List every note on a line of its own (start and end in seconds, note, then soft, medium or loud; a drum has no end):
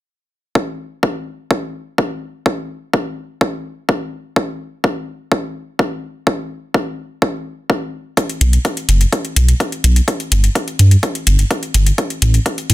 0.55 kick loud
1.03 kick loud
1.51 kick loud
1.98 kick loud
2.46 kick loud
2.93 kick loud
3.41 kick loud
3.89 kick loud
4.36 kick loud
4.84 kick loud
5.32 kick loud
5.79 kick loud
6.27 kick loud
6.74 kick loud
7.22 kick loud
7.70 kick loud
8.17 kick loud
8.17 closed hi-hat soft
8.29 closed hi-hat soft
8.41 8.58 B1 loud
8.41 closed hi-hat medium
8.53 closed hi-hat soft
8.65 kick loud
8.65 closed hi-hat soft
8.77 closed hi-hat soft
8.89 9.05 F#1 medium
8.89 closed hi-hat medium
9.01 closed hi-hat soft
9.12 kick loud
9.12 closed hi-hat soft
9.25 closed hi-hat soft
9.36 9.53 B1 medium
9.36 closed hi-hat medium
9.48 closed hi-hat soft
9.60 kick loud
9.60 closed hi-hat soft
9.72 closed hi-hat soft
9.84 10.01 B1 medium
9.84 closed hi-hat medium
9.96 closed hi-hat soft
10.08 kick loud
10.08 closed hi-hat soft
10.20 closed hi-hat soft
10.32 10.48 G1 loud
10.32 closed hi-hat medium
10.44 closed hi-hat soft
10.55 kick loud
10.55 closed hi-hat soft
10.68 closed hi-hat soft
10.79 10.96 G2 medium
10.79 closed hi-hat medium
10.91 closed hi-hat soft
11.03 kick loud
11.03 closed hi-hat soft
11.15 closed hi-hat soft
11.27 11.44 G1 medium
11.27 closed hi-hat medium
11.39 closed hi-hat medium
11.51 kick loud
11.51 closed hi-hat soft
11.63 closed hi-hat soft
11.74 11.91 G1 medium
11.74 closed hi-hat medium
11.86 closed hi-hat medium
11.98 kick loud
11.98 closed hi-hat medium
12.10 closed hi-hat soft
12.22 12.39 A1 loud
12.22 closed hi-hat medium
12.34 closed hi-hat medium
12.46 kick loud
12.46 closed hi-hat medium
12.58 closed hi-hat soft
12.70 12.74 A2 medium
12.70 closed hi-hat medium